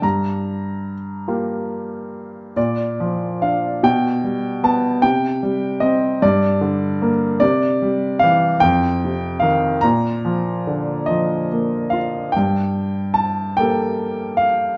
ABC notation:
X:1
M:6/8
L:1/8
Q:3/8=49
K:Gm
V:1 name="Upright piano"
b2 z4 | [K:Bb] d2 f g2 a | g2 e d2 z | d2 f g2 f |
b3 e2 f | [K:Gm] g2 a g2 f |]
V:2 name="Upright piano" clef=bass
G,,3 [B,FG]3 | [K:Bb] B,, F, D =B,, G, =B, | C, G, C G,, D, B, | C, G, =E, F,, C, _E, |
B,, F, D, F, B, F | [K:Gm] G,,3 [B,GA]3 |]